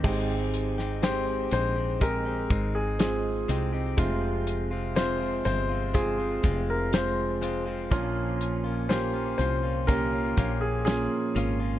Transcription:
<<
  \new Staff \with { instrumentName = "Grand piano" } { \time 4/4 \key aes \major \tempo 4 = 61 r4 c''8 c''8 bes'8. aes'16 aes'8. r16 | r4 c''8 c''8 aes'8. bes'16 c''8. r16 | r4 c''8 c''8 bes'8. aes'16 aes'8. r16 | }
  \new Staff \with { instrumentName = "Clean electric guitar" } { \time 4/4 \key aes \major <aes c' ees' g'>8. <c' ees' g'>16 <aes c' ees' g'>16 <c' ees' g'>16 <aes c' ees' g'>16 <c' ees' g'>16 <aes c' ees' g'>16 <c' ees' g'>16 <aes c' ees'>4 <aes c' ees' g'>16 <c' ees' g'>16 | <f, c f aes c' f'>8. <f aes c' f'>16 <f, c f aes c' f'>16 <f aes c' f'>16 <f aes c' f'>16 <f aes c' f'>16 <f, c f aes c' f'>16 <f aes c' f'>16 <f aes c' f'>4 <f aes c' f'>16 <f aes c' f'>16 | <bes, f bes des' f'>8. <bes des' f'>16 <bes, f bes des' f'>16 <bes des' f'>16 <f bes des' f'>16 <bes des' f'>16 <bes, f bes des' f'>16 <bes des' f'>16 <f bes des' f'>4 <f bes des' f'>16 <bes des' f'>16 | }
  \new Staff \with { instrumentName = "Upright piano" } { \time 4/4 \key aes \major <aes c' g'>4 <aes c' g'>4 <aes c' aes'>4 <aes c' f'>4 | <aes c' f'>4 <aes c' f'>4 <aes c' f'>4 <aes c' f'>4 | <bes des' f'>4 <bes des' g'>4 <bes des' g'>4 <bes des' f'>4 | }
  \new Staff \with { instrumentName = "Upright piano" } { \clef bass \time 4/4 \key aes \major <aes, ees>4. r2 r8 | c4. r2 r8 | <bes, f>4. r2 r8 | }
  \new Staff \with { instrumentName = "Fretless electric bass" } { \clef bass \time 4/4 \key aes \major aes,,4. bes,,4 aes,,4 c,8 | f,,4. g,,4 f,,4. | bes,,4. c,4 bes,,8. r16 aes,,8 | }
  \new DrumStaff \with { instrumentName = "Drums" } \drummode { \time 4/4 <cymc bd>8 hh16 sn16 <hh sn>8 hh8 <hh bd>8 <hh bd>8 <hh sn>8 hh8 | <hh bd>8 hh8 <hh sn>8 hh8 <hh bd>8 <hh bd>8 <hh sn>8 hh8 | <hh bd>8 hh8 <hh sn>8 hh8 <hh bd>8 <hh bd>8 <hh sn>8 hh8 | }
>>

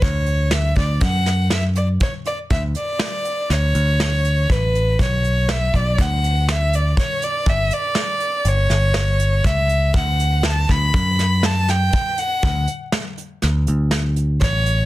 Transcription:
<<
  \new Staff \with { instrumentName = "Violin" } { \time 5/4 \key d \major \tempo 4 = 121 cis''4 e''8 d''8 fis''4 e''8 d''8 cis''8 d''8 | e''8 d''4. cis''2 b'4 | cis''4 e''8 d''8 fis''4 e''8 d''8 cis''8 d''8 | e''8 d''4. cis''2 e''4 |
fis''4 a''8 b''4. a''8 g''4 fis''8~ | fis''8 r2. r8 cis''4 | }
  \new Staff \with { instrumentName = "Picked electric bass" } { \clef bass \time 5/4 \key d \major d,4. d,8 fis,2 r4 | d,8 r4. d,8 d,4. a,,4 | b,,4. b,,8 d,2 r4 | g,,8 r4. g,,8 g,,4. cis,4 |
d,4. d,8 fis,2 r4 | d,8 r4. d,8 d,4. a,,4 | }
  \new DrumStaff \with { instrumentName = "Drums" } \drummode { \time 5/4 <hh bd>8 hh8 <hh sn>8 <hh bd>8 <hh bd>8 <hh sn>8 <hh sn>8 hh8 <hh bd>8 hh8 | <hh bd>8 hh8 <hh sn>8 hh8 <hh sn>8 hh8 <hh sn>8 hh8 <hh bd>8 hh8 | <hh bd>8 hh8 <hh sn>8 <hh bd>8 <hh bd>8 hh8 <hh sn>8 hh8 <hh bd>8 hh8 | <hh bd>8 hh8 <hh sn>8 hh8 hh8 <hh sn>8 <hh sn>8 hh8 <hh bd>8 hh8 |
<hh bd>8 hh8 <hh sn>8 <hh bd sn>8 <hh bd>8 <hh sn>8 <hh sn>8 <hh sn>8 <hh bd>8 hh8 | <hh bd>8 hh8 <hh sn>8 hh8 <hh sn>8 hh8 <hh sn>8 hh8 <hh bd sn>8 hh8 | }
>>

